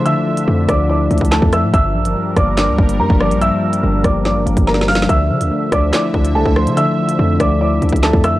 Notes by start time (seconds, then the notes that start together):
Already playing: D3 F3 A3 D4 E4 E5
0.06 D3 E5 E6, closed hi-hat
0.27 F3
0.37 closed hi-hat
0.48 F2 A3
0.69 D2 D4 D5 D6, kick, cross-stick, closed hi-hat
0.90 E4 D5 D6
1.11 D2 D4, closed hi-hat
1.18 D2, kick, closed hi-hat
1.25 closed hi-hat
1.32 A3 A4 A5, snare, clap
1.42 F2, kick
1.53 F3 E5 E6, cross-stick, closed hi-hat
1.63 A2
1.74 G1 G2 F3 G3 A#4 E5 E6, kick, closed hi-hat
1.95 A#1 F3
2.05 G1, closed hi-hat
2.16 G3
2.37 G1 A#3 D5 D6, kick, cross-stick, closed hi-hat
2.57 D4 D5 D6, snare, clap, closed hi-hat
2.68 D2
2.78 G1 A#3, kick
2.89 closed hi-hat
2.99 G2 G3 A#4 A#5
3.10 G1, kick
3.20 F3 D5 D6, cross-stick
3.31 A#1, closed hi-hat
3.41 G2 E5 E6, closed hi-hat
3.62 F3
3.73 closed hi-hat
3.83 G1 G3
4.04 G1 A#3 D5 D6, kick, cross-stick, closed hi-hat
4.25 A1 D4 D5 D6, snare
4.36 G1
4.46 G1 A#3, closed hi-hat
4.57 G1, kick, closed hi-hat
4.67 G3 A#4 A#5, snare
4.74 snare
4.81 snare
4.88 F3 F5 F6, snare, open hi-hat
4.95 snare
5.02 snare
5.09 D2 D3 E5 E6, kick, closed hi-hat
5.30 D3 F3
5.41 D2, closed hi-hat
5.51 A3
5.72 D2 D4 D5 D6, kick, cross-stick, closed hi-hat
5.93 E4 D5 D6, snare, clap, closed hi-hat
6.14 D2 D4, kick
6.25 closed hi-hat
6.35 C2 A3 A4 A5
6.46 D2, kick
6.56 F3 C5 C6, cross-stick
6.67 D3, closed hi-hat
6.77 D3 E5 E6, closed hi-hat
6.98 F3
7.09 closed hi-hat
7.19 F2 A3
7.40 D2 D4 D5 D6, kick, cross-stick, closed hi-hat
7.61 E4 D5 D6
7.82 D2 D4, closed hi-hat
7.89 D2, kick, closed hi-hat
7.96 closed hi-hat
8.03 A3 A4 A5, snare, clap
8.13 F2, kick
8.24 F3 E5 E6, cross-stick, closed hi-hat
8.34 A2